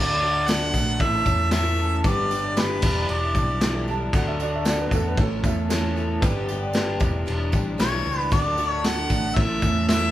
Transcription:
Already playing: fingered electric bass D2, reed electric piano F#4 A4 D5, harmonica D5
0.00 twelve-string acoustic guitar D3 A3 D4 F#4
0.25 twelve-string acoustic guitar D3 A3 D4 F#4
0.47 clean electric guitar D4, reed electric piano F#4 A4 D5, harmonica F#5, snare, tambourine, crash
0.74 fingered electric bass A#1, twelve-string acoustic guitar A3 D4 F#4, kick, tambourine
1.00 clean electric guitar A2, twelve-string acoustic guitar E3 A3 C#4, reed electric piano E4 A4 C#5, harmonica E5, kick, tambourine, crash
1.04 twelve-string acoustic guitar A4
1.26 fingered electric bass E2, clean electric guitar A3, twelve-string acoustic guitar A4, kick, tambourine
1.30 twelve-string acoustic guitar A3 C#4
1.51 twelve-string acoustic guitar A2 E3 A3 C#4, reed electric piano E4 A4 C#5, harmonica E5, snare, tambourine, crash
1.55 twelve-string acoustic guitar A4
1.79 twelve-string acoustic guitar A3 C#4 A4, tambourine
2.04 fingered electric bass G1, twelve-string acoustic guitar G2 D3 G3 B3, reed electric piano G4 B4 D5, harmonica D5, kick, tambourine, crash
2.09 twelve-string acoustic guitar D4 G4
2.31 twelve-string acoustic guitar G2 D3 G3 B3 D4 G4, tambourine
2.57 clean electric guitar D4, reed electric piano G4 B4 D5, harmonica B4, snare, tambourine, crash
2.82 fingered electric bass E1, clean electric guitar E2, twelve-string acoustic guitar G3 D4 E4, reed electric piano E4 G4 D5, kick, tambourine, crash
2.87 twelve-string acoustic guitar E3
3.09 fingered electric bass E1, twelve-string acoustic guitar E3 G3 D4, harmonica D5, tambourine, crash
3.13 twelve-string acoustic guitar E4
3.35 fingered electric bass B1, twelve-string acoustic guitar G3 D4 E4, kick, tambourine
3.39 twelve-string acoustic guitar E3
3.61 twelve-string acoustic guitar E2 B2 E3, reed electric piano E4 G4 A4, snare, tambourine, crash
3.65 twelve-string acoustic guitar G3 D4 E4
3.88 twelve-string acoustic guitar G3 D4 E4, upright piano A5, tambourine
3.92 twelve-string acoustic guitar E3
4.13 fingered electric bass D2, twelve-string acoustic guitar D3 A3 D4 F#4, reed electric piano F#4 A4 D5, upright piano F#5, kick, tambourine, crash
4.28 upright piano E5
4.39 twelve-string acoustic guitar D3 A3 D4 F#4, upright piano D5, tambourine
4.55 upright piano E5
4.65 clean electric guitar D4, reed electric piano F#4 A4 D5, snare, tambourine, crash
4.69 upright piano D5
4.81 upright piano B4
4.91 fingered electric bass E2, twelve-string acoustic guitar A3 D4 F#4, upright piano A4, kick, tambourine
5.08 upright piano B4
5.17 fingered electric bass A1, clean electric guitar A2, twelve-string acoustic guitar E3 A3 C#4 A4, reed electric piano E4 A4 C#5, upright piano A4, kick, tambourine, crash
5.44 fingered electric bass E2, twelve-string acoustic guitar A3 C#4 A4, upright piano E4, kick, tambourine
5.69 twelve-string acoustic guitar A2 E3 A3 C#4 A4, reed electric piano E4 A4 C#5, snare, tambourine, crash
5.96 twelve-string acoustic guitar A3 C#4 A4, tambourine
6.21 fingered electric bass G1, twelve-string acoustic guitar G2 D3 G3 B3 D4 G4, reed electric piano G4 B4 D5, kick, tambourine, crash
6.49 twelve-string acoustic guitar G2 D3 G3 B3 D4 G4, tambourine
6.73 clean electric guitar D4, reed electric piano G4 B4 D5, snare, tambourine, crash
7.00 fingered electric bass E1, clean electric guitar E2, twelve-string acoustic guitar E3 G3 D4 E4, reed electric piano E4 G4 D5, kick, tambourine
7.26 fingered electric bass E1, twelve-string acoustic guitar E3 G3 D4 E4, tambourine, crash
7.52 fingered electric bass A1, twelve-string acoustic guitar E3 G3 D4 E4, kick, tambourine
7.78 fingered electric bass B1, twelve-string acoustic guitar E2 B2 E3 G3 D4 E4, reed electric piano E4 G4 C#5, harmonica C#5, snare, tambourine, crash
8.05 fingered electric bass C#2, twelve-string acoustic guitar E3 G3 D4 E4, tambourine
8.31 fingered electric bass D2, twelve-string acoustic guitar D3 A3 D4 F#4, reed electric piano F#4 A4 D5, harmonica D5, kick, tambourine, crash
8.58 twelve-string acoustic guitar D3 A3 D4 F#4, tambourine
8.67 harmonica C#5
8.84 clean electric guitar D4, reed electric piano F#4 A4 D5, harmonica F#5, snare, tambourine, crash
9.10 fingered electric bass A1, twelve-string acoustic guitar A3 D4 F#4, kick, tambourine
9.36 fingered electric bass A1, clean electric guitar A2, twelve-string acoustic guitar E3 A3 C#4 E4, reed electric piano E4 A4 C#5, harmonica E5, kick, tambourine, crash
9.62 fingered electric bass E2, twelve-string acoustic guitar A3 C#4 E4, kick, tambourine
9.88 twelve-string acoustic guitar A2 E3 A3 C#4 E4, reed electric piano E4 A4 E5, harmonica E5, snare, tambourine, crash

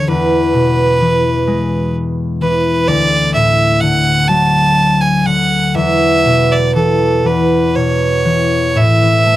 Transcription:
Already playing: harp D2 D3
0.08 harp E2, fiddle B4
0.54 harp B2
1.01 harp E3
1.47 harp G#3
2.42 harp E3, fiddle B4
2.88 harp D2, fiddle D5
3.34 harp A2, fiddle E5
3.81 harp D3, fiddle F#5
4.28 harp F#3, fiddle A5
5.01 fiddle G#5
5.26 harp D3, fiddle F#5
5.75 harp E2, fiddle E5
6.25 harp B2
6.52 fiddle D5
6.75 harp E3, fiddle A4
7.25 harp E2, fiddle B4
7.75 harp B2, fiddle C#5
8.25 harp E3
8.76 harp A2, fiddle E5
9.01 harp E3
9.26 harp A3

